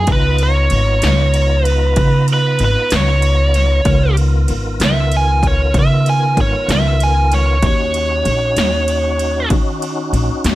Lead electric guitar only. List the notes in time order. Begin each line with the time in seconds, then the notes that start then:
0.12 B4
0.43 C#5
1.67 B4
2.33 B4
2.64 B4
2.96 C#5
4.85 E5
5.17 G#5
5.47 C#5
5.79 E5
6.09 G#5
6.41 C#5
6.72 E5
7.03 G#5
7.34 C#5
7.66 C#5